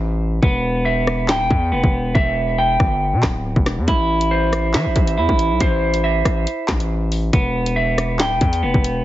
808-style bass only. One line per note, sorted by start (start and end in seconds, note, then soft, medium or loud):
0.00 0.40 A1 loud
0.43 1.30 E1 loud
1.29 1.42 D1 loud
1.40 1.50 E1 medium
1.51 1.74 E2 loud
1.72 1.83 F1 loud
1.84 2.14 E1 loud
2.15 2.77 E1 loud
2.80 3.15 G1 loud
3.13 3.23 B2 loud
3.23 3.55 D1 loud
3.56 3.79 E1 loud
3.78 3.87 E2 loud
3.88 4.76 A1 loud
4.74 4.87 E3 loud
4.86 4.95 A1 loud
4.96 5.19 A1 loud
5.17 5.28 E2 loud
5.29 5.52 A1 loud
5.50 5.60 B1 loud
5.61 6.23 A1 loud
6.25 6.46 A1 loud
6.69 7.31 A1 loud
7.33 8.21 E1 loud
8.20 8.33 D1 loud
8.31 8.41 E1 loud
8.41 8.64 E2 loud
8.63 8.74 F1 loud
8.74 9.04 E1 loud